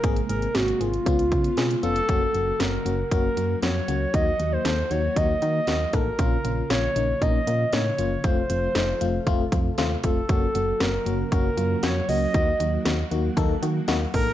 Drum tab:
HH |xxxxxxxxxxxxxxxx|x-x-x-x-x-x-x-x-|x-x-x-x-x-x-x-x-|x-x-x-x-x-x-x-x-|
SD |----o-------o---|----o-------o---|----o-------o---|----o-------o---|
BD |o-------o-o-----|o-------o-------|o-------o-----o-|o-------o-------|

HH |x-x-x-x-x-x-x-x-|x-x-x-x-x-x-x-o-|x-x-x-x-x-x-x-o-|
SD |----o-------o---|----o-------o---|----o-------o---|
BD |o-------o-o---o-|o-------o-------|o-------o-----o-|